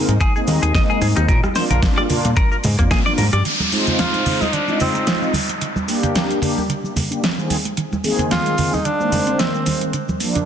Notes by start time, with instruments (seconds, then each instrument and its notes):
Already playing: analog polysynth G#3 A#3 C4 D#4 A#4
0.08 analog synth bass G#2, closed hi-hat, high conga, cabasa, shaker
0.21 clean electric guitar G#4, kick, closed hi-hat, cabasa, shaker
0.35 analog polysynth G#3 A#3 C4 D#4 D#5, clean electric guitar G#4, shaker
0.47 analog synth bass D#2, open hi-hat, high conga, cabasa, shaker
0.62 analog synth bass D#2, clean electric guitar G#4, closed hi-hat, cabasa, shaker
0.75 clean electric guitar D#5, kick, snare, closed hi-hat, cabasa, shaker
0.90 clean electric guitar G#4, shaker
1.02 analog synth bass G#2, clean electric guitar G#4, open hi-hat, high conga, cabasa, shaker
1.16 analog synth bass D#2, clean electric guitar D#4, cross-stick, closed hi-hat, cabasa, shaker
1.28 analog synth bass A#1, clean electric guitar A#4, kick, closed hi-hat, cabasa, shaker
1.44 cross-stick, high conga, shaker
1.55 analog polysynth A#3 D4 F4, clean electric guitar C5, snare, open hi-hat, cabasa, shaker
1.70 analog synth bass A#1, clean electric guitar A#4, closed hi-hat, low conga, cabasa, shaker
1.82 kick, snare, closed hi-hat, high conga, cabasa, shaker
1.98 clean electric guitar D5, cross-stick, shaker
2.09 analog synth bass A#2, analog polysynth A#3 D4 F4, open hi-hat, low conga, cabasa, shaker
2.25 analog synth bass A#2, closed hi-hat, high conga, cabasa, shaker
2.37 clean electric guitar A#4, kick, closed hi-hat, cabasa, shaker
2.52 clean electric guitar A#4, shaker
2.64 analog synth bass G#2, open hi-hat, high conga, low conga, cabasa, shaker
2.78 analog synth bass F2, analog polysynth A#3 D4 F4, clean electric guitar A#3, kick, closed hi-hat, cabasa, shaker
2.91 analog synth bass A#2, clean electric guitar G#4, kick, snare, closed hi-hat, cabasa, shaker
3.05 analog polysynth A#3 D4 F4, clean electric guitar D5, shaker
3.18 analog synth bass G#2, clean electric guitar A#4, open hi-hat, high conga, cabasa, shaker
3.33 analog synth bass G2, clean electric guitar D5, cross-stick, closed hi-hat, cabasa, shaker
3.45 synth arpeggio sound D#3, closed hi-hat, downlifter, cabasa, shaker
3.60 synth arpeggio sound F3, high conga, shaker
3.71 analog polysynth G#3 C4 D#4 F4 C5, synth arpeggio sound G#3, open hi-hat, cabasa, shaker
3.86 synth arpeggio sound C4, closed hi-hat, low conga, cabasa, shaker
3.99 synth arpeggio sound G#3, tenor saxophone F4, snare, closed hi-hat, high conga, cabasa, shaker
4.14 synth arpeggio sound F3, closed hi-hat, shaker
4.26 synth arpeggio sound D#3, analog polysynth G#3 C4 F4 C5, open hi-hat, low conga, cabasa, shaker
4.41 synth arpeggio sound F3, tenor saxophone D#4, high conga, cabasa, shaker
4.53 synth arpeggio sound D#3, tenor saxophone D4, closed hi-hat, cabasa, shaker
4.67 synth arpeggio sound F3, analog polysynth G#3 C4 D#4 F4 D#5, shaker
4.80 synth arpeggio sound G#3, tenor saxophone C4, open hi-hat, high conga, low conga, cabasa, shaker
4.95 synth arpeggio sound C4, closed hi-hat, cabasa, shaker
5.07 synth arpeggio sound G#3, snare, closed hi-hat, cabasa, shaker
5.22 synth arpeggio sound F3, shaker
5.33 synth arpeggio sound D3, open hi-hat, high conga, cabasa, shaker
5.49 synth arpeggio sound G3, closed hi-hat, cabasa, shaker
5.61 synth arpeggio sound D3, closed hi-hat, cabasa, shaker
5.76 synth arpeggio sound G3, high conga, shaker
5.88 analog polysynth A#3 D4 G4, synth arpeggio sound A#3, open hi-hat, cabasa, shaker
6.03 synth arpeggio sound D4, closed hi-hat, low conga, cabasa, shaker
6.15 synth arpeggio sound A#3, snare, closed hi-hat, high conga, cabasa, shaker
6.30 synth arpeggio sound G3, closed hi-hat, shaker
6.42 synth arpeggio sound D3, analog polysynth A#3 D4 G4, open hi-hat, low conga, cabasa, shaker
6.57 synth arpeggio sound G3, high conga, cabasa, shaker
6.69 synth arpeggio sound D3, closed hi-hat, shaker
6.84 synth arpeggio sound G3, shaker
6.96 synth arpeggio sound A#3, open hi-hat, high conga, low conga, cabasa, shaker
7.11 analog polysynth A#3 D4 G4, synth arpeggio sound D4, closed hi-hat, cabasa, shaker
7.23 synth arpeggio sound A#3, snare, closed hi-hat, cabasa, shaker
7.37 analog polysynth D#3 G#3 A#3 C4 G#4, synth arpeggio sound G3, shaker
7.50 synth arpeggio sound D#3, open hi-hat, high conga, cabasa, shaker
7.65 synth arpeggio sound G#3, closed hi-hat, cabasa, shaker
7.77 synth arpeggio sound D#3, closed hi-hat, cabasa, shaker
7.92 synth arpeggio sound G#3, high conga, shaker
8.03 analog polysynth D#3 G#3 A#3 C4 G#4, synth arpeggio sound A#3, open hi-hat, cabasa, shaker
8.19 synth arpeggio sound C4, closed hi-hat, low conga, cabasa, shaker
8.31 synth arpeggio sound A#3, tenor saxophone F4, snare, closed hi-hat, high conga, cabasa, shaker
8.46 synth arpeggio sound G#3, closed hi-hat, shaker
8.58 analog polysynth D#3 C4, synth arpeggio sound D#3, open hi-hat, low conga, cabasa, shaker
8.73 synth arpeggio sound G#3, tenor saxophone D#4, high conga, cabasa, shaker
8.85 synth arpeggio sound D#3, tenor saxophone D4, closed hi-hat, cabasa, shaker
8.99 analog polysynth D#3 G#3 A#3 C4 C5, synth arpeggio sound G#3, shaker
9.12 synth arpeggio sound A#3, open hi-hat, high conga, low conga, cabasa, shaker
9.27 synth arpeggio sound C4, closed hi-hat, cabasa, shaker
9.39 synth arpeggio sound A#3, tenor saxophone C4, snare, closed hi-hat, cabasa, shaker
9.54 synth arpeggio sound G#3, shaker
9.66 synth arpeggio sound D#3, open hi-hat, high conga, cabasa, shaker
9.81 synth arpeggio sound G#3, closed hi-hat, cabasa, shaker
9.93 synth arpeggio sound D3, closed hi-hat, cabasa, shaker
10.09 synth arpeggio sound F3, high conga, shaker
10.20 analog polysynth F3 A#3 D4, synth arpeggio sound A#3, open hi-hat, cabasa, shaker
10.35 synth arpeggio sound D4, closed hi-hat, low conga, cabasa, shaker